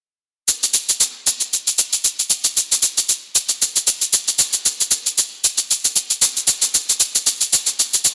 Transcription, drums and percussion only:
0.48 shaker
0.63 shaker
0.74 shaker
0.89 shaker
1.00 shaker
1.27 shaker
1.40 shaker
1.53 shaker
1.67 shaker
1.78 shaker
1.93 shaker
2.04 shaker
2.19 shaker
2.30 shaker
2.44 shaker
2.57 shaker
2.72 shaker
2.82 shaker
2.98 shaker
3.09 shaker
3.35 shaker
3.49 shaker
3.62 shaker
3.76 shaker
3.87 shaker
4.01 shaker
4.13 shaker
4.28 shaker
4.39 shaker
4.53 shaker
4.66 shaker
4.81 shaker
4.91 shaker
5.06 shaker
5.18 shaker
5.44 shaker
5.58 shaker
5.71 shaker
5.85 shaker
5.96 shaker
6.10 shaker
6.22 shaker
6.37 shaker
6.47 shaker
6.62 shaker
6.74 shaker
6.89 shaker
7.00 shaker
7.15 shaker
7.27 shaker
7.41 shaker
7.53 shaker
7.66 shaker
7.79 shaker
7.94 shaker
8.05 shaker

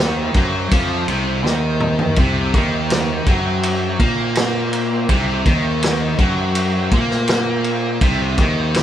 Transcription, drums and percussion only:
0.00 snare
0.34 kick, ride
0.71 kick, ride
1.08 ride
1.46 snare
1.80 mid tom
1.99 floor tom
2.16 kick, ride
2.54 kick, ride
2.90 snare, ride
3.26 kick, ride
3.63 ride
4.00 kick, ride
4.35 snare, ride
4.73 ride
5.09 kick, ride
5.46 kick, ride
5.83 snare, ride
6.19 kick, ride
6.55 ride
6.92 kick, ride
7.11 snare
7.28 snare, ride
7.64 ride
8.01 kick, ride
8.38 kick, ride
8.74 snare, ride

